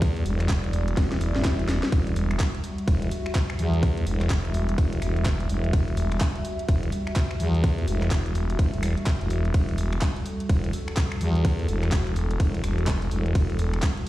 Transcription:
Already playing: fm bass E2, analog synth pad G3 F#4 D5
0.02 kick, closed hi-hat, ride
0.16 closed hi-hat
0.26 fm bass E1, open hi-hat
0.40 finger snap, clap, closed hi-hat
0.49 fm bass E1, kick, clap, closed hi-hat, ride
0.64 closed hi-hat
0.73 open hi-hat
0.88 closed hi-hat
0.97 fm bass E1, kick, snare, closed hi-hat, ride, swell
1.12 snare, closed hi-hat
1.21 open hi-hat
1.35 fm bass G1, snare
1.44 fm bass E1, kick, snare, clap, closed hi-hat, ride
1.59 closed hi-hat
1.69 snare, open hi-hat
1.83 snare, closed hi-hat
1.92 fm bass E1, analog synth pad E5, kick, closed hi-hat, ride
2.07 closed hi-hat
2.16 open hi-hat
2.31 finger snap, closed hi-hat
2.40 kick, clap, closed hi-hat, ride
2.55 closed hi-hat
2.64 open hi-hat
2.78 closed hi-hat
2.88 fm bass E1, kick, closed hi-hat, ride
3.02 closed hi-hat
3.11 open hi-hat
3.26 finger snap
3.35 kick, clap, closed hi-hat, ride
3.50 finger snap
3.59 fm bass E2, open hi-hat
3.74 closed hi-hat
3.83 kick, closed hi-hat, ride
3.97 closed hi-hat
4.07 fm bass E1, open hi-hat
4.21 finger snap, clap, closed hi-hat
4.30 fm bass E1, kick, clap, closed hi-hat, ride
4.45 closed hi-hat
4.54 open hi-hat
4.69 closed hi-hat
4.78 fm bass E1, kick, closed hi-hat, ride
4.93 closed hi-hat
5.02 fm bass E1, finger snap, open hi-hat
5.16 closed hi-hat
5.25 kick, clap, closed hi-hat, ride
5.40 closed hi-hat
5.49 fm bass E1, open hi-hat
5.64 closed hi-hat
5.73 fm bass E1, kick, closed hi-hat, ride
5.88 closed hi-hat
5.97 open hi-hat
6.12 finger snap, closed hi-hat
6.21 kick, clap, closed hi-hat, ride
6.36 closed hi-hat
6.45 open hi-hat
6.59 closed hi-hat
6.69 fm bass E1, kick, closed hi-hat, ride
6.83 closed hi-hat
6.92 open hi-hat
7.07 finger snap
7.16 kick, clap, closed hi-hat, ride
7.31 finger snap
7.40 fm bass E2, open hi-hat
7.55 closed hi-hat
7.64 kick, closed hi-hat, ride
7.78 closed hi-hat
7.88 fm bass E1, open hi-hat
8.02 finger snap, clap, closed hi-hat
8.11 fm bass E1, kick, clap, closed hi-hat, ride
8.26 closed hi-hat
8.35 open hi-hat
8.50 closed hi-hat
8.59 fm bass E1, kick, closed hi-hat, ride
8.74 fm bass E1, closed hi-hat
8.83 finger snap, open hi-hat
8.97 closed hi-hat
9.06 kick, clap, closed hi-hat, ride
9.21 fm bass E1, closed hi-hat
9.30 open hi-hat
9.45 closed hi-hat
9.54 fm bass E1, analog synth pad A4, kick, closed hi-hat, ride
9.69 closed hi-hat
9.78 open hi-hat
9.93 finger snap, closed hi-hat
10.02 kick, clap, closed hi-hat, ride
10.16 closed hi-hat
10.26 open hi-hat
10.40 closed hi-hat
10.49 fm bass E1, kick, closed hi-hat, ride
10.64 closed hi-hat
10.73 open hi-hat
10.88 finger snap
10.97 kick, clap, closed hi-hat, ride
11.12 finger snap
11.21 fm bass E2, open hi-hat
11.35 closed hi-hat
11.45 kick, closed hi-hat, ride
11.59 closed hi-hat
11.68 fm bass E1, open hi-hat
11.83 finger snap, clap, closed hi-hat
11.92 fm bass E1, kick, clap, closed hi-hat, ride
12.07 closed hi-hat
12.16 open hi-hat
12.31 closed hi-hat
12.40 fm bass E1, kick, closed hi-hat, ride
12.54 closed hi-hat
12.64 fm bass E1, finger snap, open hi-hat
12.78 closed hi-hat
12.87 kick, clap, closed hi-hat, ride
13.02 closed hi-hat
13.11 fm bass E1, open hi-hat
13.26 closed hi-hat
13.35 fm bass E1, kick, closed hi-hat, ride
13.50 closed hi-hat
13.59 open hi-hat
13.74 finger snap, closed hi-hat
13.82 kick, clap, closed hi-hat, ride
13.97 closed hi-hat

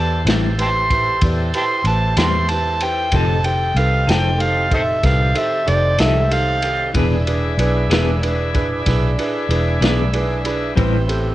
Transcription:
Already playing: fingered electric bass E2, grand piano E4 G4 B4 D5, tonewheel organ E4 G4 A4 C5, harmonica A5
0.25 fingered electric bass A1, clean electric guitar A2 G3 C4 E4, grand piano E4 G4 B4 C5, snare, ride
0.57 grand piano E4 G4 B4 C5, ride
0.62 harmonica G5 A5 C6
0.90 grand piano E4 G4 B4 C5, kick, ride
1.21 fingered electric bass E2, grand piano E4 G4 B4 D5, kick, ride
1.54 grand piano E4 G4 B4 C5, harmonica G5 A5 C6, ride
1.84 fingered electric bass A1, grand piano E4 G4 B4 C5, harmonica A5, ride
2.16 fingered electric bass E2, clean electric guitar A2 G3 C4 E4, grand piano E4 G4 B4 C5, harmonica G5 A5 C6, snare, ride
2.49 grand piano E4 G4 B4 C5, harmonica A5, ride
2.80 grand piano E4 G4 B4 C5, harmonica G5, ride
3.11 fingered electric bass F1, tonewheel organ D#3 C4 G4 A4, clean electric guitar F3 C4 D#4 A4, grand piano D#4 G4 A4 C5, kick, ride
3.17 harmonica A5
3.44 grand piano D#4 G4 A4 C5, harmonica G5, ride
3.75 fingered electric bass C2, grand piano D#4 G4 A4 B4, harmonica F5, ride
4.07 fingered electric bass F1, clean electric guitar F3 C4 D#4 A4, grand piano D#4 G4 A4 C5, harmonica G5, snare, ride
4.38 grand piano D#4 G4 A4 C5, harmonica F5, ride
4.70 grand piano D#4 G4 A4 C5, kick, ride
4.74 harmonica A4 C5 E5
5.03 fingered electric bass C2, grand piano D#4 G4 A4 B4, harmonica F5, kick, snare, ride
5.34 grand piano D#4 G4 A4 C5, harmonica E5, ride
5.66 fingered electric bass F1, grand piano D#4 G4 A4 C5, harmonica D5, ride
5.98 fingered electric bass C2, clean electric guitar F3 C4 D#4 A4, grand piano D#4 G4 A4 D#5, harmonica E5, snare, ride
6.30 grand piano D#4 G4 A4 C5, harmonica F5, ride
6.62 grand piano D#4 G4 A4 C5, ride
6.93 fingered electric bass E1, clean electric guitar E3 B3 D4 G#4, grand piano D4 E4 G#4 B4, tonewheel organ D4 E4 G#4, kick, ride
6.98 tonewheel organ B4
7.27 grand piano D4 E4 G#4 B4, ride
7.57 fingered electric bass B1, grand piano D4 E4 G#4 B4, ride
7.89 fingered electric bass E1, clean electric guitar E3 B3 D4 G#4, grand piano D4 E4 G#4 B4, snare, ride
8.22 grand piano D4 E4 G#4 B4, ride
8.54 grand piano D4 E4 G#4 B4, kick, ride
8.86 fingered electric bass B1, grand piano D4 E4 G#4 B4, kick, snare, ride
9.18 grand piano D4 E4 G#4 B4, ride
9.49 fingered electric bass E1, grand piano D4 E4 G#4 B4, ride
9.81 fingered electric bass B1, clean electric guitar E3 B3 D4 G#4, grand piano D4 E4 G#4 B4, snare, ride
10.13 grand piano D4 E4 G#4 B4 E5, ride
10.29 grand piano G#5
10.45 grand piano D4 E4 G#4 B4 B5, ride
10.76 fingered electric bass A1, clean electric guitar A2 G3 C4 E4, tonewheel organ B3 C4 E4 G4, grand piano C4 E4 G4 B4, kick, ride
11.07 grand piano C4 E4 G4 A4, ride

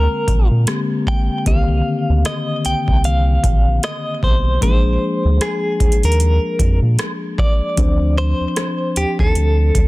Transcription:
Already playing: tine electric piano D3 G#3 A#3 C4 G5, clean electric guitar A#4
0.28 analog synth bass A#1, kick, closed hi-hat
0.51 analog synth bass A#2
0.66 tine electric piano D3 G#3 A#3 C4 G4, cross-stick, closed hi-hat
1.07 clean electric guitar G5, kick
1.45 analog synth bass C2, tine electric piano D3 A#3 C4 G4, clean electric guitar F5, kick, closed hi-hat
1.51 tine electric piano D#3
2.09 analog synth bass D2
2.25 clean electric guitar D#5, cross-stick, closed hi-hat
2.65 analog synth bass C2, clean electric guitar G5, closed hi-hat
2.88 analog synth bass C2, kick
3.04 clean electric guitar F5, closed hi-hat
3.44 analog synth bass A#1, kick, closed hi-hat
3.83 clean electric guitar D#5, cross-stick, closed hi-hat
4.23 analog synth bass B1, clean electric guitar C5, kick
4.61 analog synth bass A#1, tine electric piano F3 G#3 A#3 C#4 G#4, clean electric guitar C5, kick, closed hi-hat
4.69 tine electric piano D4
5.25 analog synth bass D2
5.41 clean electric guitar G#4, cross-stick, closed hi-hat
5.80 analog synth bass D#2, kick, closed hi-hat
5.92 closed hi-hat
6.03 analog synth bass D#2, clean electric guitar A#4, closed hi-hat
6.12 closed hi-hat
6.20 closed hi-hat
6.59 analog synth bass F2, kick, closed hi-hat
6.82 analog synth bass A#2
6.99 cross-stick, closed hi-hat
7.38 clean electric guitar D5, kick
7.76 analog synth bass D2, tine electric piano F3 C4 D4 C5, kick, closed hi-hat
8.18 clean electric guitar C5
8.40 analog synth bass D#2
8.56 cross-stick, closed hi-hat
8.96 analog synth bass D#2, clean electric guitar G4, closed hi-hat
9.19 analog synth bass D#2, clean electric guitar A4, kick
9.35 analog synth bass D2, closed hi-hat
9.75 analog synth bass D2, kick, closed hi-hat

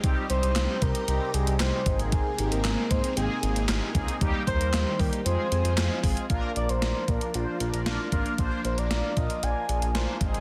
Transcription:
Already playing: string machine G3
0.03 analog synth bass C2, string machine C3 D#4, analog polysynth G3 C4 D#4 G4, kick, closed hi-hat
0.30 analog synth bass C2, analog polysynth G3, analog synth lead C5, closed hi-hat
0.43 analog synth bass C2, closed hi-hat
0.56 analog synth bass C2, analog polysynth G3 C4 D#4 G4, snare, clap, closed hi-hat
0.82 analog synth bass C3, analog polysynth G3 C4 D#4 G4, analog synth lead A#4, kick, closed hi-hat
0.95 closed hi-hat
1.08 analog synth bass C2, analog polysynth G3 C4 D#4 G4, closed hi-hat
1.34 analog synth bass C2, analog polysynth G3 C4 D#4 G4, analog synth lead G#4, closed hi-hat
1.47 analog synth bass C2, closed hi-hat
1.60 analog synth bass C2, analog polysynth G3 C4 D#4 G4, analog synth lead C5, snare, clap, closed hi-hat
1.86 analog synth bass G#1, string machine G#3 A#3, analog polysynth A#3 C4 D#4 G#4, kick, closed hi-hat
1.99 closed hi-hat
2.12 analog synth lead G#4, kick, closed hi-hat
2.38 analog synth bass G#1, analog polysynth A#3 C4 D#4 G4, closed hi-hat
2.51 analog synth bass G#1, analog synth lead A#4, closed hi-hat
2.65 analog synth bass G#1, analog polysynth A#3 C4 D#4 G#4, snare, clap, closed hi-hat
2.90 analog synth bass G#2, analog polysynth A#3 C4 D#4 G#4, analog synth lead C5, kick, closed hi-hat
3.04 closed hi-hat
3.17 analog synth bass G#1, analog polysynth A#3 C4 D#4 G#4, analog synth lead G#4, closed hi-hat
3.43 analog synth bass G#1, analog polysynth A#3 C4 D#4 G#4, closed hi-hat
3.56 analog synth bass G#1, closed hi-hat
3.67 analog synth bass G#1, analog polysynth C4 D#4 G#4, analog synth lead G4, snare, clap, closed hi-hat
3.95 analog synth bass C#2, analog polysynth A#3 C4 D#4 G#4, kick, closed hi-hat
4.08 closed hi-hat
4.21 analog synth bass D#2, string machine D#3 G4, analog polysynth G3 A#3 D#4 G4, kick, closed hi-hat
4.47 analog synth bass D#2, analog polysynth G3 A#3 D#4 A#4, analog synth lead C5, kick, closed hi-hat
4.60 analog synth bass D#2, closed hi-hat
4.73 analog synth bass D#2, analog polysynth G3 A#3 D#4 G4, snare, clap, closed hi-hat
4.99 analog synth bass D#3, analog polysynth G3 A#3 D#4 G4, analog synth lead A#4, kick, open hi-hat
5.13 closed hi-hat
5.25 analog synth bass F2, string machine F3 C4 G#4, analog polysynth G#3 C4 F4 G#4, analog synth lead C5, closed hi-hat
5.52 analog synth bass F2, analog polysynth G#3 C4 F4 G#4, closed hi-hat
5.65 analog synth bass F2, closed hi-hat
5.78 analog synth bass F2, analog polysynth G#3 C4 F4 G#4, snare, clap, closed hi-hat
6.04 analog synth bass G#1, analog polysynth G#3 C4 F4 G#4, kick, open hi-hat
6.17 closed hi-hat
6.30 analog synth bass A#1, string machine F3 A#3 D4, analog polysynth A#3 D4 F4 A#4, kick, closed hi-hat
6.56 analog synth bass A#1, analog polysynth A#3 D4 F4 A#4, analog synth lead D5, closed hi-hat
6.69 analog synth bass A#1, analog synth lead C5, closed hi-hat
6.82 analog synth bass A#1, analog polysynth A#3 D4 F4 A#4, snare, closed hi-hat
7.08 analog synth bass A#2, analog polysynth A#3 D4 F4, analog synth lead A#4, kick, closed hi-hat
7.21 closed hi-hat
7.34 analog synth bass A#1, analog polysynth A#3 D4 F4 C5, analog synth lead F4, closed hi-hat
7.60 analog synth bass A#1, analog polysynth A#3 D4 F4 A#4, closed hi-hat
7.74 analog synth bass A#1, closed hi-hat
7.86 analog synth bass A#1, analog polysynth A#3 D4 F4 A#4, snare, closed hi-hat
8.12 analog synth bass G#1, analog polysynth A#3 D4 F4 A#4, kick, closed hi-hat
8.26 closed hi-hat
8.38 analog synth bass A#1, analog polysynth A#3 D4 F4 C5, kick, closed hi-hat
8.64 analog synth bass A#1, analog polysynth A#3 D4 F4 A#4, analog synth lead C5, closed hi-hat
8.78 analog synth bass A#1, analog synth lead D5, closed hi-hat
8.91 analog synth bass A#1, analog polysynth A#3 D4 F4 A#4, snare, closed hi-hat
9.17 analog synth bass A#2, analog polysynth A#3 D4 F4 A#4, analog synth lead D#5, kick, closed hi-hat
9.30 closed hi-hat
9.43 analog synth bass A#1, analog polysynth A#3 D4 F4 A#4, analog synth lead G#5, closed hi-hat
9.69 analog synth bass A#1, analog polysynth A#3 D4 F4 G#4, closed hi-hat
9.82 analog synth bass A#1, closed hi-hat
9.95 analog synth bass A#1, analog polysynth A#3 D4 F4 C5, snare, closed hi-hat
10.21 analog synth bass G#1, string machine C3 G#3 D#4, analog polysynth G#3 C4 D#4, kick, closed hi-hat
10.34 closed hi-hat

